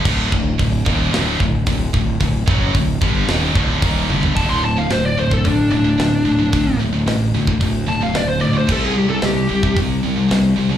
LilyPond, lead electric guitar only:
\new Staff \with { instrumentName = "Lead electric guitar" } { \time 4/4 \tempo 4 = 111 r1 | r1 | a''16 c'''16 a''16 f''16 c''16 d''16 c''16 a'16 d'8 d'4.~ | d'8 r2 a''16 f''16 d''16 c''16 d''16 c''16 |
a'16 gis'16 g'16 a'16 g'4 r2 | }